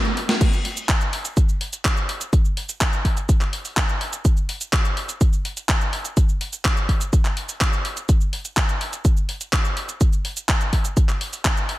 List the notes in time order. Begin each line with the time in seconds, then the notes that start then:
0.05 closed hi-hat
0.17 open hi-hat
0.29 snare, closed hi-hat
0.41 kick, closed hi-hat, crash, cabasa
0.53 cabasa
0.65 open hi-hat
0.77 closed hi-hat, cabasa
0.89 kick, clap, closed hi-hat, cabasa
1.01 closed hi-hat, cabasa
1.13 open hi-hat
1.25 closed hi-hat, cabasa
1.37 kick, closed hi-hat, cabasa
1.49 cabasa
1.61 open hi-hat
1.73 closed hi-hat, cabasa
1.85 kick, clap, closed hi-hat, cabasa
1.97 cabasa
2.09 open hi-hat
2.21 closed hi-hat, cabasa
2.33 kick, closed hi-hat, cabasa
2.45 cabasa
2.57 open hi-hat
2.69 closed hi-hat, cabasa
2.81 kick, clap, closed hi-hat, cabasa
2.93 closed hi-hat, cabasa
3.05 kick, open hi-hat
3.17 closed hi-hat, cabasa
3.29 kick, closed hi-hat, cabasa
3.41 clap, cabasa
3.53 open hi-hat
3.65 open hi-hat, cabasa
3.77 kick, clap, closed hi-hat, cabasa
3.89 cabasa
4.01 open hi-hat
4.13 closed hi-hat, cabasa
4.25 kick, closed hi-hat, cabasa
4.37 cabasa
4.49 open hi-hat
4.61 closed hi-hat, cabasa
4.73 kick, clap, closed hi-hat, cabasa
4.85 closed hi-hat, cabasa
4.97 open hi-hat
5.09 closed hi-hat, cabasa
5.21 kick, closed hi-hat, cabasa
5.33 cabasa
5.45 open hi-hat
5.57 closed hi-hat, cabasa
5.69 kick, clap, closed hi-hat, cabasa
5.81 cabasa
5.93 open hi-hat
6.05 closed hi-hat, cabasa
6.17 kick, closed hi-hat, cabasa
6.29 cabasa
6.41 open hi-hat
6.53 closed hi-hat, cabasa
6.65 kick, clap, closed hi-hat, cabasa
6.77 closed hi-hat, cabasa
6.89 kick, open hi-hat
7.01 closed hi-hat, cabasa
7.13 kick, closed hi-hat, cabasa
7.25 clap, closed hi-hat, cabasa
7.37 open hi-hat
7.49 open hi-hat, cabasa
7.61 kick, clap, closed hi-hat, cabasa
7.73 cabasa
7.85 open hi-hat
7.97 closed hi-hat, cabasa
8.09 kick, closed hi-hat, cabasa
8.21 cabasa
8.33 open hi-hat
8.45 closed hi-hat, cabasa
8.57 kick, clap, closed hi-hat, cabasa
8.69 closed hi-hat, cabasa
8.81 open hi-hat
8.93 closed hi-hat, cabasa
9.05 kick, closed hi-hat, cabasa
9.17 cabasa
9.29 open hi-hat
9.41 closed hi-hat, cabasa
9.53 kick, clap, closed hi-hat, cabasa
9.65 cabasa
9.77 open hi-hat
9.89 closed hi-hat, cabasa
10.01 kick, closed hi-hat, cabasa
10.13 cabasa
10.25 open hi-hat
10.37 closed hi-hat, cabasa
10.49 kick, clap, closed hi-hat, cabasa
10.61 closed hi-hat, cabasa
10.73 kick, open hi-hat
10.85 closed hi-hat, cabasa
10.97 kick, closed hi-hat, cabasa
11.09 clap, cabasa
11.21 open hi-hat
11.33 open hi-hat, cabasa
11.45 kick, clap, closed hi-hat, cabasa
11.57 cabasa
11.69 open hi-hat